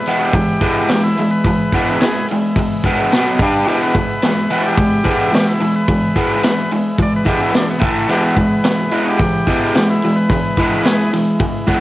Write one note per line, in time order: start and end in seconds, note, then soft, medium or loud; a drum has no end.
0.00 3.06 G#3 medium
0.00 0.18 B4 medium
0.00 3.06 B4 medium
0.00 3.07 E5 medium
0.06 0.33 E3 medium
0.06 0.33 G#3 medium
0.06 0.33 B3 medium
0.06 open hi-hat medium
0.19 0.22 F#4 medium
0.24 0.76 G4 medium
0.33 0.59 E3 medium
0.33 0.59 G#3 medium
0.33 kick loud
0.33 open hi-hat medium
0.61 0.88 E3 medium
0.61 0.88 G#3 medium
0.61 0.89 B3 medium
0.61 kick medium
0.61 open hi-hat medium
0.78 1.04 G4 medium
0.89 1.15 E3 medium
0.89 1.15 G#3 medium
0.89 snare loud
0.89 open hi-hat medium
1.04 1.30 E4 medium
1.17 1.43 E3 medium
1.17 1.44 G#3 medium
1.17 open hi-hat medium
1.31 1.98 B4 medium
1.44 1.71 E3 medium
1.44 1.71 G#3 medium
1.44 kick loud
1.44 open hi-hat medium
1.72 2.00 E3 loud
1.72 2.00 G#3 medium
1.72 2.00 B3 medium
1.72 kick medium
1.72 open hi-hat medium
2.01 2.27 E3 medium
2.01 2.27 G#3 medium
2.01 2.26 G#4 medium
2.01 2.28 B4 medium
2.01 snare loud
2.01 open hi-hat medium
2.29 2.55 E3 medium
2.29 2.55 G#3 medium
2.29 open hi-hat medium
2.56 2.82 E3 medium
2.56 2.82 G#3 medium
2.56 kick loud
2.56 open hi-hat medium
2.84 3.10 E3 medium
2.84 3.11 G#3 medium
2.84 3.11 B3 medium
2.84 kick medium
2.84 open hi-hat medium
3.12 3.38 B2 medium
3.12 3.38 F#3 medium
3.12 3.38 B3 loud
3.12 snare loud
3.12 open hi-hat medium
3.39 3.66 G3 medium
3.39 3.66 D4 medium
3.39 3.67 G4 loud
3.39 kick loud
3.39 open hi-hat medium
3.65 3.93 E3 medium
3.65 7.78 G#3 medium
3.65 3.93 G#3 loud
3.65 3.94 B3 loud
3.65 3.68 F#4 medium
3.65 3.81 G4 loud
3.65 7.79 B4 medium
3.65 open hi-hat medium
3.70 7.79 E5 medium
3.83 4.62 B4 medium
3.95 4.20 E3 medium
3.95 4.20 G#3 medium
3.95 kick medium
3.95 open hi-hat medium
4.22 4.48 E3 medium
4.22 4.48 G#3 medium
4.22 snare loud
4.22 open hi-hat medium
4.50 4.76 E3 medium
4.50 4.76 G#3 loud
4.50 4.77 B3 loud
4.50 open hi-hat medium
4.61 4.64 F#4 medium
4.66 5.19 G4 loud
4.77 5.03 E3 medium
4.77 5.03 G#3 medium
4.77 kick loud
4.77 open hi-hat medium
5.04 5.30 E3 medium
5.04 5.31 G#3 medium
5.04 5.31 B3 medium
5.04 kick medium
5.04 open hi-hat medium
5.21 5.47 G4 medium
5.32 5.57 E3 medium
5.32 5.57 G#3 medium
5.32 snare loud
5.32 open hi-hat medium
5.49 5.75 E4 loud
5.61 5.86 E3 medium
5.61 5.86 G#3 medium
5.61 open hi-hat medium
5.76 6.42 B4 medium
5.88 6.13 E3 medium
5.88 6.14 G#3 medium
5.88 kick loud
5.88 open hi-hat medium
6.16 6.42 E3 medium
6.16 6.42 G#3 loud
6.16 6.43 B3 loud
6.16 kick medium
6.16 open hi-hat medium
6.43 6.69 E3 medium
6.43 6.69 G#3 medium
6.43 6.71 B4 loud
6.43 snare loud
6.43 open hi-hat medium
6.71 6.97 E3 medium
6.71 6.96 G#3 medium
6.71 open hi-hat medium
6.98 7.24 E3 medium
6.98 7.24 G#3 medium
6.98 kick loud
6.98 open hi-hat medium
7.02 7.14 D5 loud
7.16 7.27 B4 medium
7.25 7.52 E3 medium
7.25 7.52 G#3 medium
7.25 7.53 B3 medium
7.25 kick medium
7.25 open hi-hat medium
7.29 7.41 G4 medium
7.43 7.55 E4 medium
7.53 7.78 E3 medium
7.53 7.78 G#3 medium
7.53 7.68 D4 medium
7.53 snare loud
7.53 open hi-hat medium
7.71 7.82 B3 medium
7.79 8.06 A2 medium
7.79 8.07 E3 medium
7.79 8.07 A3 loud
7.79 kick loud
7.79 open hi-hat medium
7.85 8.10 A3 medium
8.08 8.35 E3 medium
8.08 8.35 G#3 medium
8.08 8.36 B3 loud
8.08 11.80 E4 medium
8.08 8.11 F#4 medium
8.08 8.23 G4 medium
8.08 open hi-hat medium
8.12 11.80 G#3 medium
8.12 11.80 B4 medium
8.25 9.04 B4 medium
8.36 8.62 E3 medium
8.36 8.62 G#3 medium
8.36 kick medium
8.36 open hi-hat medium
8.64 8.89 E3 medium
8.64 8.89 G#3 medium
8.64 snare loud
8.64 open hi-hat medium
8.91 9.18 E3 medium
8.91 9.18 G#3 loud
8.91 9.19 B3 medium
8.91 open hi-hat medium
9.05 9.08 F#4 medium
9.09 9.61 G4 medium
9.19 9.45 E3 medium
9.19 9.45 G#3 medium
9.19 kick loud
9.19 open hi-hat medium
9.47 9.73 E3 medium
9.47 9.74 G#3 medium
9.47 9.74 B3 medium
9.47 kick medium
9.47 open hi-hat medium
9.63 9.89 G4 medium
9.75 10.01 E3 medium
9.75 10.01 G#3 medium
9.75 snare loud
9.75 open hi-hat medium
9.90 10.16 E4 medium
10.02 10.28 E3 medium
10.02 10.29 G#3 medium
10.02 open hi-hat medium
10.16 10.83 B4 medium
10.30 10.56 E3 medium
10.30 10.56 G#3 medium
10.30 kick loud
10.30 open hi-hat medium
10.57 10.84 E3 medium
10.57 10.84 G#3 loud
10.57 10.85 B3 medium
10.57 kick medium
10.57 open hi-hat medium
10.85 11.11 E3 medium
10.85 11.11 G#3 medium
10.85 11.11 G#4 medium
10.85 11.13 B4 medium
10.85 snare loud
10.85 open hi-hat medium
11.13 11.38 E3 medium
11.13 11.38 G#3 medium
11.13 open hi-hat medium
11.40 11.65 E3 medium
11.40 11.65 G#3 medium
11.40 kick loud
11.40 open hi-hat medium
11.67 11.80 E3 medium
11.67 11.80 G#3 medium
11.67 11.80 B3 medium
11.67 kick medium
11.67 open hi-hat medium